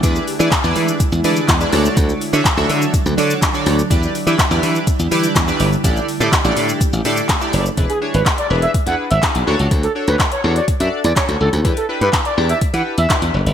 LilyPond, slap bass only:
\new Staff \with { instrumentName = "Slap bass" } { \clef bass \time 4/4 \key e \dorian \tempo 4 = 124 e,8 r16 e16 r16 e,16 e8 r16 e,16 e8 e,8 d,8 | d,8 r16 d16 r16 d,16 d8 r16 d,16 d8 r8 d,8 | e,8 r16 e16 r16 e,16 e8 r16 e,16 e8 e,8 g,,8 | a,,8 r16 a,16 r16 a,,16 a,8 r16 a,,16 a,8 r8 fis,,8 |
e,,16 r8 gis,,16 r8 e,,8 r16 e,16 r16 gis,,16 r16 b,,16 d,16 cis,16 | d,8 r16 d,16 r8 e,8 r16 fis,16 r16 e,16 r16 d,16 cis,16 d,16 | e,16 r8 g,16 r8 e,8 r16 e16 r16 e,16 r16 e,16 fis,,16 g,,16 | }